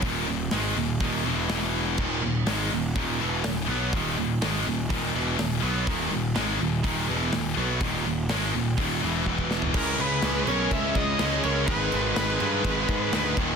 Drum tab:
CC |----------------|x---------------|----------------|----------------|
HH |o---o---o---o---|----o---o---o---|o---o---o---o---|o---o---o---o---|
SD |----o-------o---|----o-------o---|----o-------o---|----o-------o---|
FT |----------------|----------------|----------------|----------------|
BD |o-------o-------|o-------o-------|o-------o-------|o-------o-------|

CC |----------------|x-x-x-x-x-x-x-x-|x-x-x-x-x-x-x-x-|
HH |o---o---o-------|----------------|----------------|
SD |----o---------o-|----o-------o---|----o-------o---|
FT |---------------o|----------------|----------------|
BD |o-------o---oo--|o-------o-o-----|o-------o-o---o-|